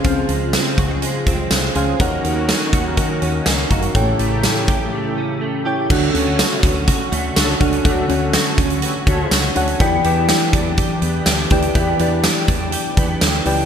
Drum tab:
CC |----------------|----------------|----------------|x---------------|
HH |x-x-x-x-x-x-x-x-|x-x-x-x-x-x-x-xx|x-x-x-x---------|--x-x-x-x-x-x-xx|
TB |----x-------x---|----x-------x---|----x-----------|----x-------x---|
SD |----o-------o---|----o-------o---|----o-----------|----o-------o---|
BD |o-----o---o-----|o-----o-o-----o-|o-----o---------|o-----o-o-----o-|

CC |----------------|----------------|----------------|
HH |x-x-x-xxx-x-x-xx|x-x-x-x-x-x-x-xx|x-x-x-x-x-x-x-o-|
TB |----x-------x---|----x-------x---|----x-------x---|
SD |----o-------o---|----o-------o---|----o-------o---|
BD |o-----o---o-----|o-----o-o-----o-|o-----o---o-----|